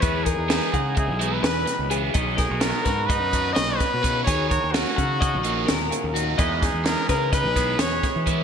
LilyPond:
<<
  \new Staff \with { instrumentName = "Clean electric guitar" } { \time 9/8 \key e \lydian \tempo 4. = 85 gis'8 ais'4 fis''8 e''4 b'4 gis'8 | dis''8 ais'4 b'8 dis''4 cis''4 b'8 | gis'8 ais'4 fis''8 dis''4 ais'4 fis'8 | dis''8 r4 b'8 dis''4 cis''4 b'8 | }
  \new Staff \with { instrumentName = "Trumpet" } { \time 9/8 \key e \lydian b'8 gis'4. gis'8. b'16 b'4 r8 | r8 gis'8 ais'4 b'4 dis''8 b'4 | cis''8 cis''8 fis'2. r8 | r8 gis'8 ais'8 ais'8 b'4 cis''4 r8 | }
  \new Staff \with { instrumentName = "Clean electric guitar" } { \time 9/8 \key e \lydian << { b8 dis'8 dis'8 dis'8 dis'8 dis'2 | r8 dis'16 fis'16 fis'8 fis'8 dis'8 fis'2 | r8 fis'8 cis'8 cis'8 cis'8 cis'2 | <gis dis' gis' b'>8 dis'8 gis'8 gis'8 dis'8 gis'8 b'8 gis'4 | } \\ { e4. gis4 b,8 e8 dis8 cis8 | b,4. fis4 fis,8 ais,8 b,8 cis8 | dis4. fis4 ais,8 b,8 cis8 dis8 | e4. gis4 b,4. e8 | } >> }
  \new Staff \with { instrumentName = "Overdriven electric guitar" } { \time 9/8 \key e \lydian <e gis b e'>8 r8 <e gis b e'>8 r4 <e gis b e'>8 r4 <e gis b e'>8 | <dis fis b dis'>8 r8 <dis fis b dis'>8 r4 <dis fis b dis'>8 r4 <dis fis b dis'>8 | <dis fis ais dis'>8 r8 <dis fis ais dis'>8 r4 <dis fis ais dis'>8 r4 <dis fis ais dis'>8 | <e gis b e'>8 r8 <e gis b e'>8 r4 <e gis b e'>8 r4 <e gis b e'>8 | }
  \new Staff \with { instrumentName = "Fingered electric bass" } { \clef bass \time 9/8 \key e \lydian e,8. e,8 r16 cis8. b,,8. e,8 r16 cis,8. | b,,8. b,,8 r16 gis,8. fis,8. b,,8 r16 b,8. | dis,8. dis,8 r16 cis8. ais,,8. dis,8 r16 dis,8. | e,8. e,8 r16 cis8. b,,8. e,8 r16 e8. | }
  \new DrumStaff \with { instrumentName = "Drums" } \drummode { \time 9/8 <hh bd>8 <hh bd>8 <hh sn>8 <hh bd>8 <hh bd>8 hh8 <hh sn>8 <hh sn>8 hh8 | <hh bd>8 <hh bd sn>8 <hh sn>8 <hh bd sn>8 <hh bd>8 <hh bd>8 <hh sn>8 <hh bd sn>8 <hh bd>8 | <hh bd>8 <hh bd>8 <hh sn>8 <hh bd>8 <hh bd>8 hh8 <hh sn>8 hh8 hh8 | <hh bd>8 <hh bd sn>8 <hh sn>8 <hh bd sn>8 <hh bd>8 <hh bd>8 <hh sn>8 <hh bd sn>8 <hh bd>8 | }
>>